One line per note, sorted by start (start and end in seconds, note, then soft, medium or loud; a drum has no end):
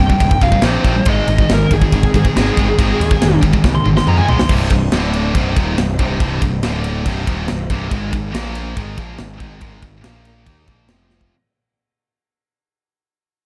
0.00 0.13 C1 medium
0.00 1.03 C3 medium
0.00 1.04 G3 medium
0.00 4.46 D#4 medium
0.00 1.03 G4 medium
0.00 0.41 G5 loud
0.09 0.19 C2 medium
0.09 0.20 G2 medium
0.09 kick medium
0.20 0.34 D#1 loud
0.20 0.40 C2 medium
0.20 0.40 G2 medium
0.20 kick loud
0.20 ride loud
0.31 kick loud
0.41 0.55 C1 medium
0.41 0.51 C2 medium
0.41 0.51 G2 medium
0.41 0.64 F5 loud
0.41 kick medium
0.41 ride medium
0.52 0.61 C2 medium
0.52 0.62 G2 medium
0.52 kick medium
0.62 0.76 A#1 loud
0.62 0.83 C2 medium
0.62 0.83 G2 loud
0.62 0.84 C3 loud
0.62 1.05 C5 medium
0.62 snare loud
0.62 ride medium
0.84 0.98 A#1 medium
0.84 0.94 C2 medium
0.84 0.94 G2 loud
0.84 0.94 C3 loud
0.84 kick medium
0.84 ride medium
0.95 1.06 C2 medium
0.95 1.06 G2 medium
1.05 1.20 G#1 medium
1.05 1.27 G#2 loud
1.05 4.45 C3 medium
1.05 1.27 D#3 medium
1.05 4.45 G#3 medium
1.05 1.27 G#3 loud
1.05 4.45 G#4 loud
1.05 kick loud
1.05 ride loud
1.09 1.50 D#5 loud
1.28 1.41 G#1 medium
1.28 1.39 G#2 medium
1.28 1.39 D#3 medium
1.28 ride medium
1.38 1.50 G#2 medium
1.38 1.50 D#3 medium
1.38 kick medium
1.49 1.63 G#1 medium
1.49 1.70 G#2 medium
1.49 1.70 D#3 medium
1.49 snare loud
1.49 ride loud
1.54 1.73 A#4 medium
1.71 1.85 G#1 medium
1.71 1.82 G#2 medium
1.71 1.81 D#3 medium
1.71 2.14 G#4 loud
1.71 kick medium
1.71 ride medium
1.82 1.91 G#2 medium
1.82 1.92 D#3 medium
1.82 kick medium
1.92 2.06 G#1 loud
1.92 2.12 G#2 medium
1.92 2.12 D#3 medium
1.92 kick loud
1.92 ride loud
2.03 kick medium
2.14 2.27 G#2 medium
2.14 2.25 G#2 medium
2.14 2.25 D#3 medium
2.14 3.40 G#4 loud
2.14 kick medium
2.14 ride medium
2.25 2.35 G#2 medium
2.25 2.35 D#3 loud
2.25 kick medium
2.36 2.50 G#1 loud
2.36 2.56 G#2 loud
2.36 2.56 D#3 loud
2.36 2.56 G#3 medium
2.36 snare loud
2.36 ride loud
2.57 2.71 G#1 medium
2.57 2.66 G#2 loud
2.57 2.67 D#3 loud
2.57 2.67 G#3 loud
2.57 kick medium
2.57 ride medium
2.68 2.77 G#2 medium
2.68 2.78 D#3 medium
2.79 2.92 G#1 medium
2.79 2.98 G#2 loud
2.79 2.99 D#3 loud
2.79 2.99 G#3 loud
2.79 kick loud
2.79 ride loud
3.00 3.14 D#2 loud
3.00 3.09 G#2 medium
3.00 3.09 D#3 medium
3.00 ride medium
3.10 3.20 G#2 medium
3.10 3.20 D#3 medium
3.10 kick loud
3.21 3.36 F1 medium
3.21 3.40 G#2 medium
3.21 3.40 D#3 medium
3.21 snare loud
3.21 ride loud
3.42 3.56 G#1 medium
3.42 3.52 G#2 medium
3.42 3.52 D#3 medium
3.42 kick medium
3.42 ride medium
3.53 3.63 G#2 medium
3.53 3.64 D#3 medium
3.53 kick medium
3.64 3.77 C2 medium
3.64 3.83 G#2 medium
3.64 3.83 D#3 medium
3.64 kick loud
3.64 snare medium
3.75 3.85 C6 loud
3.75 high tom medium
3.85 3.99 G#1 medium
3.85 3.96 G#2 medium
3.85 3.96 D#3 medium
3.85 mid tom medium
3.97 4.06 G#2 medium
3.97 4.07 D#3 medium
3.97 4.08 C6 loud
3.97 snare medium
4.06 4.20 F2 loud
4.06 4.27 G#2 loud
4.06 4.27 D#3 loud
4.06 4.27 G#3 medium
4.06 4.18 A#5 loud
4.06 mid tom medium
4.17 4.28 G#5 loud
4.17 mid tom medium
4.28 4.42 B1 medium
4.28 4.38 G#2 loud
4.28 4.38 D#3 medium
4.28 4.38 G#3 loud
4.28 4.49 C6 loud
4.28 floor tom medium
4.39 4.50 G#2 medium
4.39 4.50 D#3 loud
4.39 snare medium
4.46 4.69 C1 medium
4.46 4.70 C2 loud
4.46 4.90 C3 medium
4.46 4.90 G3 medium
4.46 4.90 D#4 medium
4.46 4.90 C5 medium
4.46 kick loud
4.46 crash loud
4.51 4.70 G2 loud
4.51 4.71 C3 loud
4.70 4.90 C1 medium
4.70 4.88 C2 medium
4.70 4.88 G2 medium
4.70 kick loud
4.70 ride medium
4.90 5.32 D1 loud
4.90 5.34 D2 medium
4.90 5.33 A2 medium
4.90 5.35 A2 medium
4.90 5.35 D3 loud
4.90 5.33 A3 medium
4.90 5.34 D4 medium
4.90 5.34 D5 medium
4.90 snare loud
4.90 ride loud
5.13 ride medium
5.34 5.55 C1 medium
5.34 5.55 C2 medium
5.34 5.56 G2 medium
5.34 6.61 C3 medium
5.34 5.56 C3 loud
5.34 6.61 G3 medium
5.34 6.62 D#4 medium
5.34 6.61 C5 loud
5.34 kick loud
5.34 ride loud
5.56 5.76 D#1 medium
5.56 5.77 D#2 medium
5.56 5.77 A#2 loud
5.56 5.77 D#3 loud
5.56 kick loud
5.56 ride medium
5.78 5.97 C1 medium
5.78 5.95 C2 medium
5.78 5.95 G2 medium
5.78 snare loud
5.78 ride medium
5.99 6.19 C1 loud
5.99 6.20 C2 loud
5.99 6.20 G2 loud
5.99 6.20 C3 loud
5.99 kick loud
5.99 ride medium
6.20 6.40 C1 medium
6.20 6.41 C2 loud
6.20 6.42 G2 loud
6.20 6.42 C3 loud
6.20 kick loud
6.20 ride loud
6.42 6.61 C1 medium
6.42 6.59 C2 medium
6.42 6.60 G2 medium
6.42 kick loud
6.42 ride medium
6.62 7.02 D1 medium
6.62 7.05 D2 loud
6.62 7.05 A2 medium
6.62 7.05 A2 loud
6.62 7.06 D3 loud
6.62 7.05 A3 medium
6.62 7.05 D4 medium
6.62 7.05 D5 medium
6.62 snare loud
6.62 ride loud
6.84 ride medium
7.05 7.26 C1 loud
7.05 7.26 C2 medium
7.05 7.27 G2 loud
7.05 7.90 C3 medium
7.05 7.27 C3 loud
7.05 7.90 G3 medium
7.05 8.32 D#4 medium
7.05 7.90 C5 medium
7.05 kick loud
7.05 ride loud
7.26 7.47 D#1 medium
7.26 7.47 D#2 medium
7.26 7.48 A#2 loud
7.26 7.48 D#3 loud
7.26 kick loud
7.26 ride medium
7.48 7.69 C1 medium
7.48 7.65 C2 medium
7.48 7.66 G2 medium
7.48 snare loud
7.48 ride loud
7.70 7.89 C1 loud
7.70 7.90 C2 loud
7.70 7.91 G2 loud
7.70 7.91 C3 loud
7.70 kick medium
7.70 ride medium
7.91 8.11 G#1 medium
7.91 8.11 G#2 loud
7.91 8.34 G#2 medium
7.91 8.11 D#3 loud
7.91 8.34 D#3 medium
7.91 8.12 G#3 loud
7.91 8.34 G#4 medium
7.91 kick loud
7.91 ride loud
8.12 8.33 G#1 loud
8.12 8.29 G#2 medium
8.12 8.29 D#3 medium
8.12 kick loud
8.12 ride medium
8.34 8.74 A#1 loud
8.34 8.76 A#2 medium
8.34 8.77 A#2 medium
8.34 8.76 F3 loud
8.34 8.77 F3 medium
8.34 8.76 A#3 loud
8.34 8.77 F4 medium
8.34 8.77 A#4 medium
8.34 snare loud
8.34 ride loud
8.55 ride medium
8.77 8.96 G#1 loud
8.77 8.97 G#2 medium
8.77 10.04 G#2 medium
8.77 8.97 D#3 medium
8.77 10.04 D#3 medium
8.77 8.98 G#3 loud
8.77 10.03 D#4 medium
8.77 10.04 G#4 medium
8.77 kick loud
8.77 ride loud
8.97 9.17 A#1 medium
8.97 9.19 A#2 medium
8.97 9.19 F3 loud
8.97 9.19 A#3 loud
8.97 kick loud
8.97 ride medium
9.18 9.39 G#1 medium
9.18 9.36 G#2 medium
9.18 9.36 D#3 medium
9.18 snare loud
9.18 ride medium
9.40 9.60 G#1 loud
9.40 9.59 G#2 loud
9.40 9.60 D#3 loud
9.40 9.61 G#3 loud
9.40 kick medium
9.40 ride medium
9.61 9.81 G#1 medium
9.61 9.82 G#2 loud
9.61 9.82 D#3 loud
9.61 9.82 G#3 loud
9.61 kick loud
9.61 ride loud
9.82 10.02 G#1 medium
9.82 10.00 G#2 medium
9.82 10.00 D#3 medium
9.82 kick loud
9.82 ride medium
10.03 10.44 A#1 loud
10.03 10.46 A#2 medium
10.03 10.46 F3 medium
10.03 10.45 F3 loud
10.03 10.45 A#3 loud
10.03 10.46 F4 medium
10.03 10.46 A#4 medium
10.03 snare loud
10.03 ride loud
10.25 ride medium
10.45 10.67 D#2 loud
10.45 10.88 G#2 medium
10.45 10.88 D#3 medium
10.45 10.67 D#3 medium
10.45 10.67 A#3 loud
10.45 10.89 D#4 medium
10.45 10.67 D#4 medium
10.45 10.89 G#4 medium
10.45 kick loud
10.45 ride loud
10.67 10.88 A#1 medium
10.67 10.88 A#2 medium
10.67 10.88 F3 loud
10.67 10.89 A#3 loud
10.67 kick loud
10.67 ride medium
10.88 11.29 F1 loud
10.88 11.31 F2 medium
10.88 11.31 C3 medium
10.88 11.31 C3 loud
10.88 11.31 F3 medium
10.88 11.32 F3 medium
10.88 11.31 F4 medium
10.88 11.31 C5 medium
10.88 snare loud
10.88 ride loud
11.10 snare medium
11.21 kick medium